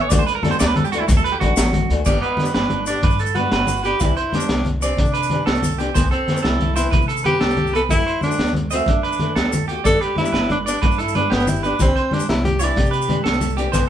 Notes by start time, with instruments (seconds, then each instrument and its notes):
0.01 clean electric guitar C#5
0.10 upright bass D2, steel-string acoustic guitar E3 A3 D4 F#4, clean electric guitar D5, kick, closed hi-hat, high conga, low conga, maracas
0.19 clean electric guitar C5, low conga
0.26 clean electric guitar B4, closed hi-hat, maracas
0.35 clean electric guitar A#4
0.42 steel-string acoustic guitar E3 A3 D4 F#4, clean electric guitar A4, snare, closed hi-hat, high conga, low conga
0.51 clean electric guitar C5, maracas
0.59 upright bass D2, clean electric guitar D5, snare, closed hi-hat, low conga, maracas
0.68 clean electric guitar B4, low conga
0.76 clean electric guitar A4, closed hi-hat, high conga, low conga
0.84 clean electric guitar G4, low conga, maracas
0.92 steel-string acoustic guitar E3 A3 D4 F#4, clean electric guitar F#4, closed hi-hat, low conga, maracas
1.00 clean electric guitar E4
1.08 upright bass D2, muted clean electric guitar stroke, kick, closed hi-hat, high conga, low conga, maracas
1.17 clean electric guitar A4, maracas
1.24 clean electric guitar B4, closed hi-hat, low conga
1.32 clean electric guitar G4, low conga
1.40 upright bass A1, steel-string acoustic guitar E3 A3 D4 F#4, clean electric guitar F#4, closed hi-hat, high conga, low conga
1.56 upright bass A1, snare, closed hi-hat, maracas
1.73 closed hi-hat, high conga, low conga
1.90 upright bass D2, steel-string acoustic guitar E3 A3 D4 F#4, closed hi-hat
2.05 upright bass G1, steel-string acoustic guitar B3 D4 G4, clean electric guitar D5, kick, crash, high conga, low conga, maracas
2.21 tenor saxophone B3, clean electric guitar B4, closed hi-hat, low conga
2.37 steel-string acoustic guitar B3 D4 G4, snare, closed hi-hat, high conga, low conga
2.45 maracas
2.54 upright bass G1, tenor saxophone D4, clean electric guitar B4, snare, closed hi-hat
2.62 low conga
2.70 closed hi-hat, high conga, low conga
2.86 steel-string acoustic guitar B3 D4 G4, tenor saxophone D4, clean electric guitar D5, closed hi-hat, maracas
3.03 upright bass G2, clean electric guitar B4, kick, closed hi-hat, high conga, low conga
3.10 maracas
3.19 clean electric guitar A4, closed hi-hat, maracas
3.26 maracas
3.35 steel-string acoustic guitar B3 D4, tenor saxophone F#4, clean electric guitar B4, closed hi-hat, high conga, low conga
3.39 steel-string acoustic guitar G4
3.52 upright bass G1, clean electric guitar B4, snare, closed hi-hat
3.67 closed hi-hat, high conga, low conga, maracas
3.84 steel-string acoustic guitar B3 D4 G4, tenor saxophone G4, clean electric guitar B4, closed hi-hat, maracas
4.00 upright bass C2, steel-string acoustic guitar E3 C4 D4 G4, tenor saxophone E4, kick, closed hi-hat, high conga, low conga, maracas
4.17 clean electric guitar C5, closed hi-hat
4.32 steel-string acoustic guitar E3 C4 D4 G4, tenor saxophone D4, snare, closed hi-hat, high conga, low conga
4.40 maracas
4.49 upright bass C2, snare, closed hi-hat
4.57 low conga
4.65 closed hi-hat, high conga, low conga
4.80 steel-string acoustic guitar E3 C4 D4 G4, tenor saxophone C4, clean electric guitar D5, closed hi-hat, maracas
4.97 upright bass C3, tenor saxophone D4, kick, closed hi-hat, high conga, low conga
5.05 maracas
5.14 clean electric guitar B4, closed hi-hat, maracas
5.23 maracas
5.30 steel-string acoustic guitar E3 C4 D4 G4, closed hi-hat, high conga, low conga
5.46 upright bass C2, clean electric guitar A4, snare, closed hi-hat
5.55 maracas
5.63 closed hi-hat, high conga, low conga, maracas
5.72 maracas
5.78 steel-string acoustic guitar E3 C4 D4 G4, clean electric guitar G4, closed hi-hat, low conga, maracas
5.94 upright bass C2, steel-string acoustic guitar E3 B3 C4, clean electric guitar C5, kick, closed hi-hat, high conga, low conga, maracas
6.11 tenor saxophone C4, clean electric guitar A4, closed hi-hat, low conga
6.27 steel-string acoustic guitar E3 B3 C4, snare, closed hi-hat, low conga
6.37 maracas
6.43 upright bass C2, tenor saxophone E4, clean electric guitar A4, snare, closed hi-hat
6.53 low conga
6.60 tenor saxophone E4, closed hi-hat, high conga, low conga
6.75 steel-string acoustic guitar E3 B3 C4, tenor saxophone E4, clean electric guitar C5, closed hi-hat, maracas
6.91 upright bass C3, clean electric guitar B4, kick, closed hi-hat, high conga, low conga
7.01 maracas
7.08 clean electric guitar A4, closed hi-hat, maracas
7.17 maracas
7.23 steel-string acoustic guitar E3 B3 C4, tenor saxophone G4, clean electric guitar B4, closed hi-hat, high conga, low conga
7.40 upright bass C2, clean electric guitar A4, snare, closed hi-hat
7.50 maracas
7.57 closed hi-hat, high conga, low conga
7.67 maracas
7.73 steel-string acoustic guitar E3 B3 C4, tenor saxophone A4, clean electric guitar B4, closed hi-hat, low conga, maracas
7.89 upright bass D2, steel-string acoustic guitar E3 A3 E4 F#4, tenor saxophone E4, kick, closed hi-hat, high conga, low conga, maracas
7.98 low conga
8.05 clean electric guitar C5, closed hi-hat, low conga
8.21 steel-string acoustic guitar E3 A3, tenor saxophone D4, closed hi-hat, high conga, low conga, maracas
8.25 steel-string acoustic guitar E4 F#4
8.31 maracas
8.38 upright bass D2, snare, closed hi-hat
8.47 low conga, maracas
8.53 closed hi-hat, high conga, low conga
8.71 steel-string acoustic guitar E3 A3 E4 F#4, tenor saxophone C4, clean electric guitar E5, closed hi-hat, low conga, maracas
8.79 low conga
8.86 upright bass D3, tenor saxophone D4, kick, closed hi-hat, high conga, low conga
8.95 low conga
9.03 clean electric guitar B4, closed hi-hat
9.12 low conga, maracas
9.19 steel-string acoustic guitar E3 A3 E4, closed hi-hat, high conga, low conga
9.35 upright bass D2, clean electric guitar A4, snare, closed hi-hat, maracas
9.52 closed hi-hat, high conga, low conga, maracas
9.68 steel-string acoustic guitar A3 F#4, clean electric guitar G4, closed hi-hat
9.84 upright bass G1, steel-string acoustic guitar B3 D4 G4, tenor saxophone A4, clean electric guitar D5, kick, closed hi-hat, high conga, low conga, maracas
10.01 tenor saxophone G4, clean electric guitar B4, closed hi-hat, low conga
10.16 steel-string acoustic guitar B3 D4, tenor saxophone E4, snare, closed hi-hat, high conga, low conga
10.21 steel-string acoustic guitar G4
10.25 maracas
10.32 upright bass G1, clean electric guitar B4, snare, closed hi-hat
10.41 low conga
10.50 tenor saxophone D4, closed hi-hat, high conga, low conga
10.66 steel-string acoustic guitar B3 D4 G4, tenor saxophone D4, clean electric guitar D5, closed hi-hat, maracas
10.82 upright bass G2, clean electric guitar B4, kick, closed hi-hat, high conga, low conga
10.91 maracas
10.98 tenor saxophone E4, clean electric guitar A4, closed hi-hat, maracas
11.08 maracas
11.15 steel-string acoustic guitar B3 D4 G4, tenor saxophone D4, clean electric guitar B4, closed hi-hat, high conga, low conga
11.30 upright bass G1, tenor saxophone B3, clean electric guitar G4, snare, closed hi-hat
11.40 maracas
11.47 tenor saxophone E4, closed hi-hat, high conga, low conga, maracas
11.63 steel-string acoustic guitar B3 D4 G4, tenor saxophone D4, clean electric guitar B4, closed hi-hat, low conga, maracas
11.79 upright bass C2, steel-string acoustic guitar E3 C4 D4 G4, tenor saxophone C4, kick, closed hi-hat, high conga, low conga, maracas
11.96 clean electric guitar C5, closed hi-hat, low conga
12.11 steel-string acoustic guitar E3 D4 G4, tenor saxophone D4, muted steel-string acoustic guitar stroke, closed hi-hat, high conga, low conga
12.20 maracas
12.29 upright bass C2, tenor saxophone E4, snare, closed hi-hat
12.36 low conga
12.44 tenor saxophone G4, closed hi-hat, high conga, low conga
12.59 steel-string acoustic guitar E3 C4 D4, tenor saxophone E4, clean electric guitar D5, closed hi-hat, maracas
12.65 steel-string acoustic guitar G4
12.76 upright bass C3, tenor saxophone G4, kick, closed hi-hat, high conga, low conga
12.85 maracas
12.91 clean electric guitar B4, closed hi-hat, maracas
13.02 maracas
13.07 steel-string acoustic guitar E3 C4 D4 G4, closed hi-hat, high conga, low conga
13.24 upright bass C2, clean electric guitar A4, snare, closed hi-hat
13.33 maracas
13.41 closed hi-hat, high conga, low conga, maracas
13.50 maracas
13.57 steel-string acoustic guitar E3 C4 D4 G4, clean electric guitar G4, closed hi-hat, low conga, maracas
13.72 upright bass C2, steel-string acoustic guitar E3 B3 C4, clean electric guitar C5, kick, closed hi-hat, high conga, low conga, maracas